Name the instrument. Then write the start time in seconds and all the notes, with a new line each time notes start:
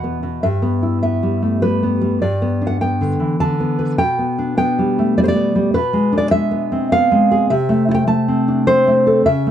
nylon-string guitar
Already playing: E2 B2 F#5
0.04 B3
0.23 B2
0.43 G2 E5
0.62 B3
0.83 E4
1.03 B3 E5
1.23 G3
1.42 A3
1.62 G3 B4
1.83 B3
2.01 G3
2.22 G2 D5
2.42 B3
2.62 D4
2.67 F#5
2.81 B3 G5
3.01 D3
3.20 E3
3.40 D3 A5
3.60 B3
3.79 B4
3.98 B2 G5
4.19 B3
4.39 D4
4.57 B3 G5
4.79 G3
4.98 A3
5.18 G3 D5
5.24 C5
5.28 D5
5.36 B3
5.55 G3
5.74 B2 B4
5.93 G#3
6.12 D4
6.18 D5
6.31 G#3 E5
6.51 B3
6.72 C4
6.92 B3 F5
7.12 G#3
7.31 G#4
7.50 C3 E5
7.69 A3
7.89 E4
7.94 G5
8.07 A3 A5
8.28 C4
8.48 D4
8.67 C4 C5
8.87 A3
9.07 A4
9.26 C#3 E5
9.47 A3